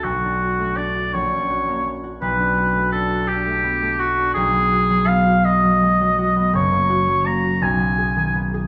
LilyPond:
<<
  \new Staff \with { instrumentName = "Oboe" } { \time 6/8 \key b \minor \tempo 4. = 55 fis'4 d''8 cis''4 r8 | b'4 a'8 g'4 fis'8 | \key b \lydian gis'4 eis''8 dis''4. | cis''4 ais''8 gis''4 r8 | }
  \new Staff \with { instrumentName = "Harp" } { \time 6/8 \key b \minor <b,, a d' fis' a'>16 d'16 fis'16 a16 d'16 fis'16 ais,,16 cis'16 fis'16 ais16 cis'16 fis'16 | b,,16 d'16 fis'16 a16 d'16 fis'16 d'16 a16 b16 a16 fis'16 d'16 | \key b \lydian b,,16 b16 fis'16 fis16 b16 fis'16 b16 fis16 gis16 fis16 fis'16 b16 | fis,,16 ais16 fis'16 fis16 ais16 fis'16 b,,16 b16 gis'16 dis16 b16 gis'16 | }
>>